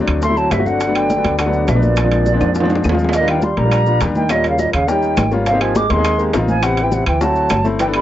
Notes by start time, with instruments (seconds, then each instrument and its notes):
0.00 grand piano F#3 A3 C4 D4
0.08 upright bass D2, high bongo, high conga, high timbale, claves, maracas
0.22 trombone A3, flute C6, high bongo, high conga, maracas
0.29 grand piano F#3 A3 C4 E4
0.37 trombone F#3, flute A5, high conga, maracas
0.51 upright bass G1, trombone C3, flute E5, high bongo, low bongo, high conga, high timbale, claves, maracas
0.58 grand piano F#3 A3 C4 F#4
0.66 trombone D3, flute F#5, high bongo, high conga, maracas
0.80 high bongo, high conga, high timbale, maracas
0.87 grand piano F#3 A3 B3 D4
0.95 trombone D3, flute G5, high conga, high timbale, claves, maracas
1.10 high bongo, high conga, maracas
1.16 grand piano F#3 A3 B3 D4
1.24 upright bass D2, high conga, high timbale, maracas
1.39 trombone D3, flute F#5, high bongo, high conga, high timbale, claves, maracas
1.46 grand piano F#3 A3 B3 D4
1.53 high conga, maracas
1.68 upright bass A#1, trombone B2, flute E5, high bongo, low bongo, high conga, high timbale, maracas
1.74 grand piano F#3 A3 B3 D4
1.82 trombone A#2, flute D5, high conga, maracas
1.97 high bongo, high conga, high timbale, claves, maracas
2.04 grand piano F3 G#3 C4 D4
2.11 high bongo, high conga, high timbale, maracas
2.26 high bongo, high conga, maracas
2.33 grand piano F3 G#3 C4 D4
2.41 upright bass F2, high bongo, high conga, high timbale, claves, maracas
2.55 high bongo, high conga, maracas
2.60 grand piano F3 G#3 C4 D4, high timbale
2.65 high bongo
2.69 high conga, high timbale, maracas
2.75 low bongo
2.84 upright bass D#2, low bongo, high conga, claves, maracas
2.89 grand piano F3 G#3 C4 F4, low timbale
2.95 low bongo, maracas
3.04 low bongo
3.09 low timbale
3.13 trombone A#2, flute D#5, high bongo, high conga, high timbale, maracas
3.21 grand piano G3 A#3 D4 F4
3.27 trombone D#3, flute G5, high conga, high timbale, claves, maracas
3.42 trombone G3, flute C6, high bongo, high conga, maracas
3.57 upright bass A#1, grand piano G3 A#3 D4 G4, trombone G3, flute A#5, high conga, high timbale, maracas
3.64 grand piano G3 A#3 D4 F4
3.71 high bongo, high conga, high timbale, claves, maracas
3.86 grand piano G3 A#3 D4 F4, high conga, maracas
4.01 upright bass D#2, grand piano G3 A#3 D4 G4, high bongo, low bongo, high conga, high timbale, maracas
4.15 trombone D#3, flute G5, high conga, maracas
4.29 trombone A#2, grand piano G3 A#3 C#4 F4, flute D#5, high bongo, high conga, high timbale, claves, maracas
4.44 high bongo, high conga, high timbale, maracas
4.49 trombone C#3, flute F5
4.59 trombone A#2, flute D#5, high bongo, high conga, maracas
4.73 upright bass D#2, trombone C#3, flute F5, high bongo, high conga, high timbale, claves, maracas
4.87 trombone D#3, grand piano G3 A#3 C#4 G4, flute G5, high bongo, high conga, maracas
5.02 high conga, maracas
5.17 upright bass G#1, high bongo, low bongo, high conga, high timbale, claves, maracas
5.32 grand piano G3 A#3 C#4 F4, high bongo, maracas
5.46 trombone C3, flute F5, high bongo, high conga, high timbale, maracas
5.53 grand piano A#3 C4 D#4 G4
5.61 trombone F3, flute G#5, high conga, high timbale, claves, maracas
5.75 trombone G#3, flute D6, high bongo, high conga, maracas
5.89 upright bass D#2, trombone G#3, grand piano A#3 C4 D#4 G4, flute C6, high conga, high timbale, maracas
5.97 grand piano A#3 C4 D#4 G#4
6.04 high bongo, high conga, high timbale, claves, maracas
6.18 grand piano A#3 C4 D#4 G4, high conga, maracas
6.33 upright bass A1, grand piano A#3 C4 D#4 F4, high bongo, low bongo, high conga, high timbale, low timbale, maracas
6.48 trombone F3, flute G#5, high conga, maracas
6.63 trombone C3, grand piano B3 C4 E4 G4, flute F#5, high bongo, high conga, high timbale, claves, maracas
6.77 high bongo, high conga, high timbale, maracas
6.83 trombone E3, flute G5
6.92 trombone C3, flute F#5, high bongo, high conga, maracas
7.06 upright bass D2, trombone E3, flute G5, high bongo, high conga, high timbale, claves, maracas
7.21 trombone F#3, grand piano A3 C4 E4 F#4, flute A5, high bongo, high conga, maracas
7.36 high conga, maracas
7.50 upright bass G1, high bongo, low bongo, high conga, high timbale, claves, maracas
7.64 grand piano A3 C4 E4 A4, high bongo, maracas
7.79 trombone E3, flute G5, high bongo, high conga, high timbale, maracas
7.86 grand piano B3 D4 E4 A4
7.93 trombone G3, flute B5, high conga, high timbale, claves, maracas